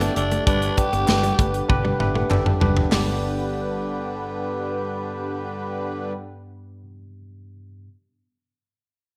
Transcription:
Already playing: tine electric piano G2 D4 G4 A4, harmonium D3 A3 G4, analog polysynth A3 G4 D5, tenor saxophone D4
0.01 clean electric guitar B3, closed hi-hat
0.16 fingered electric bass F#1, tine electric piano D4 G4 A4, tenor saxophone D4, muted clean electric guitar stroke, closed hi-hat
0.31 clean electric guitar A3, closed hi-hat
0.46 fingered electric bass G1, tine electric piano G2 D4 G4 B4, clean electric guitar G3, analog polysynth G3 D4 B4, harmonium B3, tenor saxophone D4, kick, closed hi-hat
0.62 closed hi-hat
0.77 tine electric piano D4 G4 B4, tenor saxophone G4, muted clean electric guitar stroke, kick, closed hi-hat
0.93 fingered electric bass G1, clean electric guitar B3, closed hi-hat
1.07 fingered electric bass G1, tine electric piano D4 G4 B4, muted clean electric guitar stroke, snare, clap, tambourine
1.23 clean electric guitar G3, closed hi-hat
1.38 fingered electric bass G1, clean electric guitar A3, tine electric piano D4 G4 B4, kick, closed hi-hat
1.54 closed hi-hat
1.69 fingered electric bass G1, tine electric piano D4 G4 B4, kick, high tom
1.85 clean electric guitar G3, high tom
1.99 fingered electric bass G1, tine electric piano D4 G4 B4 E5, muted clean electric guitar stroke, mid tom
2.15 clean electric guitar A3, tine electric piano F#5, mid tom
2.30 fingered electric bass G1, tine electric piano D4 G4 A4 G5, clap, mid tom
2.46 tine electric piano A5, mid tom
2.60 fingered electric bass F#1, clean electric guitar G3, tine electric piano D4 G4 B4, floor tom
2.77 floor tom
2.90 fingered electric bass G1, tine electric piano G2 B3 D4 G4, harmonium D3 B3 G4, clean electric guitar G3, analog polysynth G3 D4 B4, snare, clap, open hi-hat
2.94 tine electric piano D5

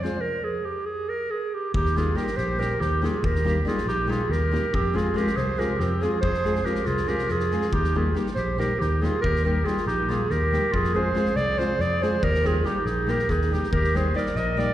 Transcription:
0.03 nylon-string guitar G#3 C4 F4 G#4, clarinet C5, snare
0.21 clarinet A#4
0.44 clarinet G#4
0.65 clarinet G4
0.85 clarinet G#4
1.09 clarinet A#4
1.31 clarinet G#4
1.54 clarinet G4
1.74 fingered electric bass D#2, clarinet D#4 G4, kick
1.85 snare
1.96 nylon-string guitar G3 A#3 D#4 G4, clarinet F4 G#4, snare
2.15 nylon-string guitar G3 A#3 D#4 G4, clarinet G4 A#4, snare
2.27 snare
2.36 fingered electric bass A#1, clarinet G4 C5, snare
2.59 nylon-string guitar G3 A#3 D#4 G4, clarinet G4 A#4, snare
2.80 fingered electric bass D#2, clarinet D#4 G4, snare
3.02 nylon-string guitar G3 A#3 D#4 G4, clarinet F4 G#4, snare
3.23 fingered electric bass D#2, clarinet G4 A#4, kick
3.35 snare
3.44 nylon-string guitar G3 A#3 D#4 G4, snare
3.65 nylon-string guitar G3 A#3 D#4 G4, clarinet F4 G#4, snare
3.77 snare
3.86 fingered electric bass A#1, clarinet D#4 G4, snare
4.07 nylon-string guitar G3 A#3 D#4 G4, clarinet F4 G#4, snare
4.29 fingered electric bass D#2, clarinet G4 A#4, snare
4.52 nylon-string guitar G3 A#3 D#4 G4, snare
4.74 fingered electric bass F2, clarinet C4 G4, kick
4.94 nylon-string guitar G#3 C4 F4 G#4, clarinet F4 G#4, snare
5.14 nylon-string guitar G#3 C4 F4 G#4, clarinet G4 A#4, snare
5.27 snare
5.36 fingered electric bass C2, clarinet G#4 C5, snare
5.57 nylon-string guitar G#3 C4 F4 G#4, clarinet G4 A#4, snare
5.79 fingered electric bass F2, clarinet C4 G4, snare
6.01 nylon-string guitar G#3 C4 F4 G#4, clarinet F4 G#4, snare
6.21 fingered electric bass F2, clarinet G#4 C5, kick
6.34 snare
6.44 nylon-string guitar G#3 C4 F4 G#4, snare
6.55 snare
6.64 nylon-string guitar G#3 C4 F4 G#4, clarinet G4 A#4, snare
6.75 snare
6.85 fingered electric bass C2, clarinet F4 G#4, snare
6.97 snare
7.07 nylon-string guitar G#3 C4 F4 G#4, clarinet G4 A#4, snare
7.18 snare
7.28 fingered electric bass F2, clarinet F4 G#4, snare
7.39 snare
7.51 nylon-string guitar G#3 C4 F4 G#4, snare
7.61 snare
7.73 fingered electric bass D#2, clarinet D#4 G4, kick
7.84 snare
7.95 nylon-string guitar G3 A#3 D#4 G4, clarinet F4 G#4
8.14 nylon-string guitar G3 A#3 D#4 G4, snare
8.26 snare
8.35 fingered electric bass A#1, clarinet G4 C5, snare
8.58 nylon-string guitar G3 A#3 D#4 G4, clarinet G4 A#4, snare
8.79 fingered electric bass D#2, clarinet D#4 G4, snare
9.01 nylon-string guitar G3 A#3 D#4 G4, clarinet F4 G#4, snare
9.21 fingered electric bass D#2, clarinet G4 A#4, kick
9.36 snare
9.44 nylon-string guitar G3 A#3 D#4 G4, clarinet G4 A#4
9.64 nylon-string guitar G3 A#3 D#4 G4, clarinet F4 G#4, snare
9.77 snare
9.86 fingered electric bass A#1, clarinet D#4 G4, snare
10.09 nylon-string guitar G3 A#3 D#4 G4, clarinet F4 G#4, snare
10.29 fingered electric bass D#2, clarinet G4 A#4, snare
10.52 nylon-string guitar G3 A#3 D#4 G4, snare
10.72 fingered electric bass F2, clarinet F4 G#4, kick
10.84 snare
10.94 nylon-string guitar G#3 C4 F4 G#4, clarinet G#4 C5
11.15 nylon-string guitar G#3 C4 F4 G#4, snare
11.25 snare
11.35 fingered electric bass C2, clarinet G#4 D5, snare
11.58 nylon-string guitar G#3 C4 F4 G#4, clarinet G#4 C5, snare
11.79 fingered electric bass F2, clarinet G#4 D5, snare
12.01 nylon-string guitar G#3 C4 F4 G#4, clarinet G#4 C5, snare
12.23 fingered electric bass D#2, clarinet G4 A#4, kick
12.34 snare
12.43 nylon-string guitar G3 A#3 D#4 G4, clarinet F4 G#4, snare
12.64 nylon-string guitar G3 A#3 D#4 G4, clarinet D#4 G4, snare
12.85 fingered electric bass A#1, clarinet D#4 G#4, snare
13.07 nylon-string guitar G3 A#3 D#4 G4, clarinet A#4, snare
13.11 clarinet G4
13.19 snare
13.29 fingered electric bass D#2, clarinet D#4 G#4, kick, snare
13.41 snare
13.51 nylon-string guitar G3 A#3 D#4 G4, clarinet D#4 G4, snare
13.63 snare
13.72 fingered electric bass D#2, clarinet G4 A#4, kick
13.84 snare
13.94 nylon-string guitar G3 A#3 D#4 G4, clarinet G#4 C5, snare
14.14 nylon-string guitar G3 A#3 D#4 G4, clarinet A#4 D5, snare
14.26 snare
14.35 fingered electric bass A#1, clarinet A#4 D#5, snare
14.57 nylon-string guitar G3 A#3 D#4 G4, clarinet A#4 D5, snare

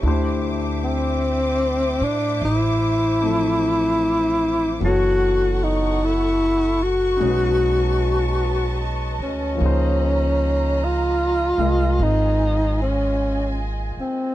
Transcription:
0.03 upright bass D2, grand piano A3 D4 E4 G4, string section C5 E5 D6
0.08 grand piano C5
0.84 tenor saxophone C4
2.01 upright bass A2, tenor saxophone D4
2.41 upright bass A1, tenor saxophone E4
3.20 grand piano F3 A3 C4 A4
4.80 upright bass F#1, grand piano E3 F#3 B3 A4, string section A4 F#5 C#6
4.85 tenor saxophone F#4, grand piano C#5
5.63 tenor saxophone D#4
6.04 tenor saxophone E4
6.83 tenor saxophone F#4
7.17 upright bass B1, grand piano G#3 D#4
7.22 grand piano C#4 F#4, string section B4 D#5 A5
7.27 grand piano B4
9.19 upright bass D2
9.23 tenor saxophone C#4
9.55 grand piano F3 A#3
9.60 upright bass C#2, grand piano D#4 G#4, string section F4 A#5
9.66 grand piano C5
10.84 tenor saxophone F4
11.58 upright bass C2, grand piano G#3 F4 A#4 D#5
11.99 upright bass G#1, tenor saxophone D#4, string section G#5
12.82 tenor saxophone C#4
13.97 tenor saxophone C4, muted upright bass stroke

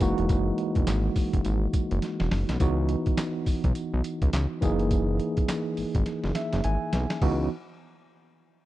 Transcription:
0.00 analog synth bass F#1, tine electric piano E3 G#3 A#3 D#4 F#4, kick, closed hi-hat, tambourine
0.18 analog synth bass E1, closed hi-hat
0.29 analog synth bass F#1, kick, closed hi-hat, tambourine
0.58 closed hi-hat
0.75 analog synth bass E1, kick, closed hi-hat
0.87 analog synth bass G#1, snare, clap, closed hi-hat, tambourine
1.16 kick, open hi-hat, tambourine
1.33 analog synth bass F#1, kick, closed hi-hat
1.45 analog synth bass G#1, closed hi-hat, tambourine
1.73 kick, closed hi-hat, tambourine
1.91 analog synth bass F#1, closed hi-hat
2.02 snare, closed hi-hat
2.20 analog synth bass E1, snare
2.31 analog synth bass F#1, snare, open hi-hat
2.49 analog synth bass B1, snare, closed hi-hat
2.60 analog synth bass C#2, tine electric piano E3 B3 D#4 F#4, kick, closed hi-hat, tambourine
2.89 closed hi-hat
3.06 kick, closed hi-hat
3.17 snare, clap, closed hi-hat, tambourine
3.46 analog synth bass B1, kick, open hi-hat, tambourine
3.64 analog synth bass B1, kick, closed hi-hat
3.75 closed hi-hat, tambourine
3.93 analog synth bass B1
4.04 closed hi-hat, tambourine
4.22 analog synth bass C#2, kick, closed hi-hat
4.33 analog synth bass C#2, snare, clap, closed hi-hat, tambourine
4.61 analog synth bass F#1, tine electric piano E3 A#3 D#4 G#4, kick, closed hi-hat, tambourine
4.79 closed hi-hat
4.91 kick, closed hi-hat, tambourine
5.20 closed hi-hat
5.37 kick, closed hi-hat
5.48 snare, clap, closed hi-hat, tambourine
5.77 analog synth bass G#1, open hi-hat, tambourine
5.95 analog synth bass G#1, kick, closed hi-hat
6.06 snare, closed hi-hat
6.24 analog synth bass F#1, snare
6.35 tine electric piano E5, snare, closed hi-hat
6.53 analog synth bass F#1, snare, closed hi-hat
6.64 analog synth bass G#1, tine electric piano G#5, closed hi-hat
6.93 analog synth bass B1, snare, closed hi-hat
7.10 snare, closed hi-hat
7.22 analog synth bass C#2, tine electric piano E3 B3 D#4 F#4, kick, crash

